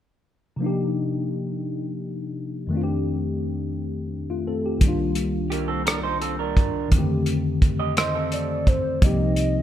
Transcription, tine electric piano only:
0.56 2.65 C3 medium
0.56 2.66 F3 soft
0.60 2.67 A#3 soft
0.60 2.68 D4 medium
0.60 2.69 D#4 soft
0.66 2.70 G4 medium
2.67 4.75 F2 medium
2.67 4.76 D#3 medium
2.67 4.08 A3 medium
2.73 4.09 C4 soft
2.73 4.10 D4 soft
2.73 2.80 F4 soft
2.83 4.15 G4 medium
4.30 4.46 A3 soft
4.30 4.46 F4 soft
4.47 4.64 C4 soft
4.47 4.63 A4 soft
4.66 4.98 G4 soft
4.78 6.86 C2 medium
4.78 6.87 D#3 medium
4.82 6.88 G3 medium
4.82 6.89 A#3 medium
4.82 6.90 D4 medium
4.88 6.91 F4 medium
6.88 8.96 F2 medium
6.88 8.97 D#3 medium
6.92 9.00 D3 medium
6.92 6.98 G#3 soft
6.92 8.99 C4 medium
6.98 9.02 A3 medium
6.98 9.01 G4 medium
9.01 9.62 F3 medium
9.01 9.62 A#3 medium
9.01 9.62 C4 medium
9.01 9.62 D#4 medium
9.06 9.62 G4 medium

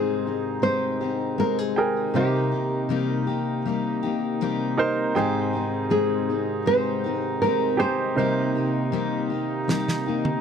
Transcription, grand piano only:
0.00 0.21 G#2 soft
0.00 0.56 G#4 medium
0.00 0.56 C5 medium
0.00 0.55 G5 medium
1.76 2.13 G#4 medium
1.76 2.14 A#4 medium
1.76 2.13 G5 medium
2.14 3.24 C3 soft
2.14 3.58 D#4 medium
2.14 3.58 A#4 soft
2.14 3.58 C5 medium
4.77 5.14 D#4 medium
4.77 5.14 A#4 medium
4.77 5.14 C5 medium
5.15 6.25 G#2 medium
5.15 6.59 G#4 medium
5.15 6.59 C5 medium
5.15 6.58 G5 medium
7.77 8.14 G4 medium
7.77 8.15 G#4 medium
7.77 8.15 C5 medium
8.15 9.26 C3 soft
8.15 9.60 D#4 soft
8.15 9.60 A#4 soft
8.15 9.61 C5 medium

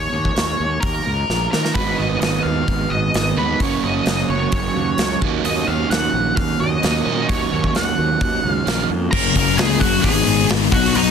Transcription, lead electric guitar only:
0.00 0.78 C#5 medium
0.81 1.50 A#4 medium
1.52 1.74 A#4 medium
1.75 1.99 B4 medium
1.98 2.19 D#5 medium
2.20 2.43 D#5 medium
2.43 2.91 F5 medium
2.90 3.34 D#5 medium
3.38 3.62 B4 medium
3.61 3.84 C#5 medium
3.84 4.30 D#5 medium
4.30 5.18 C#5 medium
5.45 5.69 D#5 medium
5.67 5.90 F5 medium
5.90 6.36 F#5 medium
6.36 6.58 F5 medium
6.60 7.28 D#5 medium
7.29 7.72 C#5 medium
7.76 8.49 F#5 medium
8.49 8.87 F5 medium
9.11 9.55 A#4 medium
9.11 9.59 A#5 loud
9.57 9.80 G#4 medium
9.57 9.80 G#5 medium
9.80 10.03 F#4 medium
9.80 10.02 F#5 medium
10.02 10.47 G#4 medium
10.02 10.45 G#5 medium
10.72 10.94 F#4 medium
10.72 10.97 F#5 loud
10.96 11.11 D#4 medium
10.96 11.11 D#5 loud

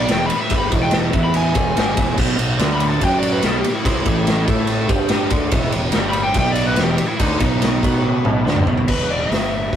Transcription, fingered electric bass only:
0.09 0.29 E1 medium
0.51 0.71 G1 loud
0.72 1.11 E1 loud
1.14 1.53 E2 loud
1.55 1.75 E1 medium
1.78 1.97 G1 medium
1.97 2.17 E1 medium
2.18 2.37 B1 loud
2.38 2.58 B1 medium
2.59 2.98 D2 loud
3.02 3.41 F#2 medium
3.42 3.62 B1 medium
3.85 4.04 C2 loud
4.06 4.45 A1 loud
4.48 4.87 A2 loud
4.89 5.28 G2 medium
5.31 5.51 D2 loud
5.52 5.72 E1 loud
5.76 5.94 E1 loud
5.96 6.34 G1 loud
6.35 6.75 B1 loud
6.78 6.97 E1 loud
7.20 7.39 D2 loud
7.41 7.80 B1 loud
7.83 8.22 B2 loud
8.25 8.44 B1 medium
8.46 8.66 D2 loud
8.66 8.86 B1 loud
8.89 9.08 E1 medium
9.09 9.28 E1 medium
9.29 9.69 G1 medium
9.73 9.76 B1 medium

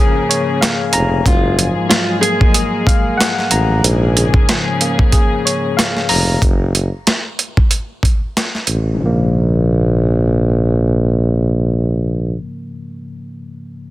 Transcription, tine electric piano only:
0.00 1.26 G#2 medium
0.00 1.26 C#3 medium
0.00 1.26 F3 medium
0.00 1.26 A#3 medium
0.00 1.26 G#4 loud
0.29 1.26 C#5 medium
0.61 1.26 F5 medium
0.93 1.26 A#5 loud
1.28 3.84 G#2 loud
1.58 3.84 F3 medium
1.90 3.83 F#3 medium
2.23 3.84 A#3 medium
2.54 3.84 G#4 loud
2.87 3.84 F5 loud
3.18 3.83 F#5 loud
3.51 3.84 A#5 medium
3.85 6.42 G#2 medium
4.16 6.42 C#3 medium
4.49 6.42 F3 medium
4.81 6.42 A#3 medium
5.12 6.42 G#4 loud
5.45 6.42 C#5 medium
5.77 6.42 F5 medium
6.09 6.42 A#5 loud
8.94 12.56 G#2 medium
8.94 12.60 C#3 medium
9.02 12.64 F3 medium
9.06 12.68 A#3 medium

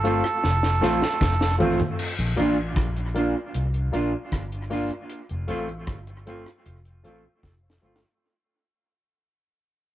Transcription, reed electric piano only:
0.04 0.23 F4 medium
0.04 0.23 A4 medium
0.04 0.23 C5 medium
0.04 0.23 F5 loud
0.81 1.01 F4 loud
0.81 1.01 A4 medium
0.81 1.01 C5 medium
0.81 1.02 F5 loud
1.41 1.48 C5 soft
1.41 1.48 F5 soft
1.59 1.78 F4 medium
1.59 1.79 A4 medium
1.59 1.79 C5 medium
1.59 1.79 F5 loud
2.36 2.56 F4 loud
2.36 2.56 A#4 medium
2.36 2.57 D5 medium
2.36 2.57 F5 medium
3.14 3.34 F4 medium
3.14 3.34 A#4 medium
3.14 3.34 D5 medium
3.14 3.35 F5 medium
3.92 4.12 F4 medium
3.92 4.12 A#4 loud
3.92 4.12 D5 medium
3.92 4.12 F5 loud
4.70 4.90 F4 loud
4.70 4.90 A#4 medium
4.70 4.90 D5 medium
4.70 4.90 F5 loud
5.48 5.67 F4 medium
5.48 5.68 A4 medium
5.48 5.68 C5 medium
5.48 5.68 F5 loud
6.26 6.46 F4 medium
6.26 6.46 A4 medium
6.26 6.46 C5 medium
6.26 6.46 F5 medium
7.04 7.23 F4 medium
7.04 7.23 A4 medium
7.04 7.24 C5 medium
7.04 7.24 F5 loud
7.62 7.70 C5 soft
7.62 7.70 F5 soft
7.82 8.01 F4 medium
7.82 8.01 A4 medium
7.82 8.02 C5 medium
7.82 8.02 F5 loud

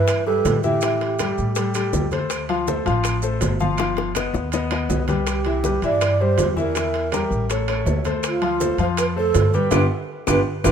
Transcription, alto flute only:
0.00 0.24 B4 loud
0.26 0.61 A4 loud
0.64 1.71 G4 medium
5.30 5.81 G4 medium
5.84 6.23 D5 loud
6.21 6.58 C5 loud
6.59 7.46 A#4 medium
8.27 8.77 F4 loud
8.82 8.88 C5 medium
9.00 9.06 B4 loud
9.19 9.56 A4 loud
9.55 9.72 B4 loud
9.73 9.84 B4 medium
10.29 10.40 B4 medium
10.65 10.72 B4 medium

